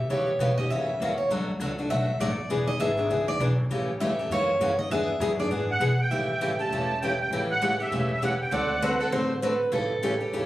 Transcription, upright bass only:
0.09 0.39 C#3 medium
0.39 0.69 B2 loud
0.70 0.99 F#2 medium
1.00 1.29 E2 medium
1.29 1.59 D2 medium
1.60 1.89 C#2 medium
1.90 2.19 B1 medium
2.20 2.36 A1 medium
2.37 muted upright bass stroke soft
2.50 2.79 E1 medium
2.81 3.09 G#1 medium
3.10 3.39 C#2 medium
3.40 3.69 B1 loud
3.70 3.99 A1 medium
4.01 4.29 E2 medium
4.30 4.59 F#2 medium
4.60 4.89 G2 medium
4.90 5.20 E2 medium
5.20 5.49 F#2 loud
5.50 5.80 G#2 medium
5.80 6.10 B2 medium
6.10 6.59 A1 medium
6.70 7.19 E1 medium
7.31 7.79 A1 medium
7.91 8.40 E1 medium
8.52 9.00 D2 medium
9.12 9.60 A1 medium
9.72 10.21 A1 medium
10.33 10.46 E2 medium

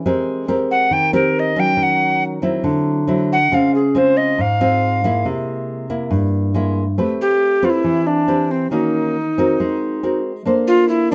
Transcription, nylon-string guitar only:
0.06 0.90 G#3 medium
0.06 0.45 C4 medium
0.06 0.45 G4 medium
0.06 0.46 A#4 medium
0.48 1.10 C4 medium
0.48 1.10 G4 medium
0.48 1.10 A#4 medium
0.91 1.76 D#3 medium
1.13 1.53 C4 medium
1.13 1.53 G4 medium
1.13 1.53 A#4 medium
1.56 2.40 F#3 medium
1.56 2.40 C#4 medium
1.77 2.62 D#3 medium
2.42 3.04 F#3 medium
2.42 3.05 C4 medium
2.42 3.05 E4 medium
2.64 3.49 D3 medium
3.07 3.36 F#3 medium
3.07 3.36 C4 medium
3.07 3.36 E4 medium
3.52 4.36 C#3 medium
3.52 3.80 G#3 medium
3.52 3.80 C4 medium
3.52 3.80 F4 medium
3.95 4.38 G#3 medium
3.95 4.38 C4 medium
3.95 4.39 F4 medium
4.38 5.23 G#2 medium
4.61 5.00 G#3 medium
4.61 5.00 C4 medium
4.61 5.00 F4 medium
5.04 5.87 G#3 medium
5.04 5.87 A#3 medium
5.04 5.87 E4 medium
5.25 6.10 C3 medium
5.90 6.52 A#3 medium
5.90 6.52 E4 medium
6.11 6.96 G2 medium
6.54 6.83 G#3 medium
6.54 6.83 A#3 medium
6.54 6.83 E4 medium
6.98 7.83 A3 medium
6.98 7.60 C4 medium
6.98 7.60 G4 soft
6.98 7.60 B4 medium
7.63 8.25 C4 medium
7.63 8.25 G4 medium
7.63 8.25 B4 medium
7.84 8.70 E3 medium
8.28 8.68 C4 medium
8.28 8.69 G4 medium
8.28 8.69 B4 medium
8.71 9.56 D#3 medium
8.71 9.15 A#3 medium
8.71 9.15 C#4 medium
8.71 9.15 F#4 medium
9.38 10.00 C4 medium
9.38 10.00 F#4 medium
9.38 10.00 A#4 medium
9.60 10.44 G#3 medium
10.03 10.31 C4 medium
10.03 10.31 F#4 medium
10.03 10.31 A#4 medium
10.45 11.15 A#3 medium
10.45 11.08 D4 medium
10.45 11.08 A4 medium
10.45 11.08 C5 medium
11.12 11.15 D4 medium

